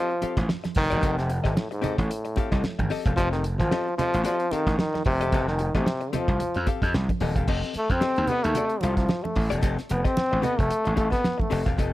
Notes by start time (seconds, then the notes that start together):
Already playing: F3 C4 G4
0.10 muted hollow-body jazz guitar stroke
0.22 C4 G4 A4 F5, muted slap bass stroke, closed hi-hat, muted conga
0.37 A1, muted hollow-body jazz guitar stroke, kick, snare, closed hi-hat
0.49 muted hollow-body jazz guitar stroke, snare, high conga
0.64 muted hollow-body jazz guitar stroke, snare, closed hi-hat, high conga
0.75 F1 D#3, kick, open hi-hat
0.90 E1 C4 G4 A4 D#5, closed hi-hat
1.01 F1 C4 G4 A4 D#5, kick, closed hi-hat, muted conga
1.17 C3, muted hollow-body jazz guitar stroke, snare, closed hi-hat
1.29 muted hollow-body jazz guitar stroke, closed hi-hat
1.44 G#1 C3 C4 G4 A4 D#5, kick, snare, closed hi-hat
1.56 A2, muted hollow-body jazz guitar stroke, snare, high conga
1.71 G#2, muted hollow-body jazz guitar stroke, closed hi-hat
1.82 C4 G4 A4 D#5, muted slap bass stroke, closed hi-hat, low conga
1.97 A1 A2, muted hollow-body jazz guitar stroke, kick, closed hi-hat
2.10 muted hollow-body jazz guitar stroke, closed hi-hat
2.25 muted hollow-body jazz guitar stroke, closed hi-hat
2.36 C4 G4 A4 F5, muted slap bass stroke, kick, closed hi-hat, muted conga
2.51 C2 C4 G4 A4 D#5, kick, snare, closed hi-hat
2.63 muted hollow-body jazz guitar stroke, muted slap bass stroke, snare, high conga
2.79 G#1, muted hollow-body jazz guitar stroke, kick, closed hi-hat, high conga
2.90 C4 G4 A4 D#5, open hi-hat
3.06 E1 C4 G4 A4 F5, kick, closed hi-hat
3.16 F1 F3 C4 G4 A4 D#5, kick, closed hi-hat, muted conga
3.32 D#3, snare, closed hi-hat
3.44 closed hi-hat, muted conga
3.59 G#1 F3, muted hollow-body jazz guitar stroke, kick, snare, closed hi-hat
3.71 C4 G4 A4 D#5, snare, high conga
3.87 muted hollow-body jazz guitar stroke
3.98 F3 C4 G4 A4 D#5, muted slap bass stroke, closed hi-hat, low conga
4.13 A1, muted hollow-body jazz guitar stroke, closed hi-hat
4.24 F3 C4 G4 A4 D#5, closed hi-hat
4.39 muted hollow-body jazz guitar stroke, closed hi-hat
4.51 D#3 C4 G4 A4 F5, muted slap bass stroke, closed hi-hat, muted conga
4.67 A1, muted hollow-body jazz guitar stroke, kick, snare, closed hi-hat
4.79 D#3, muted hollow-body jazz guitar stroke, snare, high conga
4.94 muted hollow-body jazz guitar stroke, snare, high conga
5.05 F1 C3, kick, open hi-hat
5.21 E1 C4 G4 A4 D#5, closed hi-hat
5.32 F1 C4 G4 A4 D#5, kick, closed hi-hat, muted conga
5.48 D#3, muted hollow-body jazz guitar stroke, snare
5.59 muted hollow-body jazz guitar stroke, closed hi-hat, muted conga
5.75 A1 C3 C4 G4 A4 D#5, kick, snare, closed hi-hat
5.86 muted hollow-body jazz guitar stroke, snare, high conga
6.01 muted hollow-body jazz guitar stroke, closed hi-hat
6.13 F3 C4 G4 A4 D#5, muted slap bass stroke, closed hi-hat, low conga
6.28 C2, muted hollow-body jazz guitar stroke, kick, closed hi-hat
6.40 muted hollow-body jazz guitar stroke, closed hi-hat, low conga
6.54 F2, muted hollow-body jazz guitar stroke, closed hi-hat
6.67 C4 G4 A4 F5, kick, closed hi-hat, muted conga
6.82 F2 C4 G4 A4 D#5, kick, snare, closed hi-hat
6.94 C2, muted hollow-body jazz guitar stroke, snare, high conga
7.09 muted hollow-body jazz guitar stroke, kick, closed hi-hat, high conga
7.20 D#1 C4 G4 A4 D#5, open hi-hat, high conga
7.36 E1 C4 G4 A4 F5, kick, closed hi-hat
7.47 F1 C4 G4 A4 D#5, kick, crash, muted conga
7.63 snare, closed hi-hat
7.74 A3, muted slap bass stroke, closed hi-hat, muted conga
7.90 F2 C4, muted hollow-body jazz guitar stroke, kick, snare, closed hi-hat
8.01 C4 G4 A4 D#5, snare, high conga
8.16 D#2, muted hollow-body jazz guitar stroke, closed hi-hat
8.27 B3 C4 G4 A4, closed hi-hat, low conga
8.32 D#5
8.43 D#2 A3, muted hollow-body jazz guitar stroke, closed hi-hat
8.55 C4 G4 A4 D#5, closed hi-hat, low conga
8.69 muted hollow-body jazz guitar stroke, closed hi-hat
8.81 C2 F3 C4 G4 A4 F5, closed hi-hat, muted conga
8.97 F3, muted hollow-body jazz guitar stroke, kick, snare, closed hi-hat
9.09 muted hollow-body jazz guitar stroke, snare, high conga
9.23 A3, muted hollow-body jazz guitar stroke, high conga
9.36 A1, kick, open hi-hat
9.50 E1 C4 G4 A4 D#5, closed hi-hat
9.61 F1 C4 G4 A4 D#5, kick, closed hi-hat, muted conga
9.77 muted hollow-body jazz guitar stroke, snare, closed hi-hat
9.89 F1 B3, muted hollow-body jazz guitar stroke, closed hi-hat, muted conga
10.04 C4 G4 A4 D#5, kick, snare, closed hi-hat
10.17 muted slap bass stroke, snare, high conga
10.31 A1, muted hollow-body jazz guitar stroke
10.42 B3 C4 G4 A4 D#5, closed hi-hat, low conga
10.57 F1 A3, muted hollow-body jazz guitar stroke, kick, closed hi-hat
10.70 muted hollow-body jazz guitar stroke, muted slap bass stroke, closed hi-hat
10.84 A1, muted hollow-body jazz guitar stroke, closed hi-hat
10.96 A3 C4 G4 A4 F5, kick, closed hi-hat, muted conga
11.10 B3 C4 G4 A4 D#5, kick, snare, closed hi-hat
11.23 muted hollow-body jazz guitar stroke, snare, high conga
11.38 A3, muted hollow-body jazz guitar stroke, kick, high conga
11.50 F1 C4 G4 A4 D#5, open hi-hat
11.66 E1 C4 G4 A4 F5, kick, snare, closed hi-hat
11.78 F1 C4 G4 A4 D#5, kick, closed hi-hat, muted conga